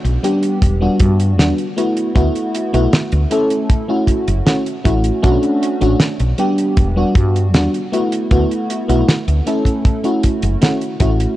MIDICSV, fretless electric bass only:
0, 0, Header, 1, 2, 480
1, 0, Start_track
1, 0, Tempo, 769231
1, 1347, Time_signature, 4, 2, 24, 8
1, 7092, End_track
2, 0, Start_track
2, 0, Title_t, "Fretless electric bass"
2, 0, Program_c, 0, 35
2, 28, Note_on_c, 0, 35, 80
2, 104, Note_off_c, 0, 35, 0
2, 387, Note_on_c, 0, 28, 83
2, 541, Note_off_c, 0, 28, 0
2, 625, Note_on_c, 0, 43, 103
2, 867, Note_off_c, 0, 43, 0
2, 867, Note_on_c, 0, 40, 87
2, 944, Note_off_c, 0, 40, 0
2, 1346, Note_on_c, 0, 38, 96
2, 1424, Note_off_c, 0, 38, 0
2, 1708, Note_on_c, 0, 35, 90
2, 1784, Note_off_c, 0, 35, 0
2, 1949, Note_on_c, 0, 38, 84
2, 2024, Note_off_c, 0, 38, 0
2, 2669, Note_on_c, 0, 30, 89
2, 2744, Note_off_c, 0, 30, 0
2, 3029, Note_on_c, 0, 33, 93
2, 3181, Note_off_c, 0, 33, 0
2, 3270, Note_on_c, 0, 35, 101
2, 3346, Note_off_c, 0, 35, 0
2, 3629, Note_on_c, 0, 33, 86
2, 3705, Note_off_c, 0, 33, 0
2, 3869, Note_on_c, 0, 35, 83
2, 3944, Note_off_c, 0, 35, 0
2, 4226, Note_on_c, 0, 28, 89
2, 4380, Note_off_c, 0, 28, 0
2, 4463, Note_on_c, 0, 43, 100
2, 4707, Note_off_c, 0, 43, 0
2, 4707, Note_on_c, 0, 40, 90
2, 4784, Note_off_c, 0, 40, 0
2, 5186, Note_on_c, 0, 38, 95
2, 5264, Note_off_c, 0, 38, 0
2, 5549, Note_on_c, 0, 35, 92
2, 5624, Note_off_c, 0, 35, 0
2, 5788, Note_on_c, 0, 38, 82
2, 5864, Note_off_c, 0, 38, 0
2, 6507, Note_on_c, 0, 30, 89
2, 6583, Note_off_c, 0, 30, 0
2, 6867, Note_on_c, 0, 33, 90
2, 7020, Note_off_c, 0, 33, 0
2, 7092, End_track
0, 0, End_of_file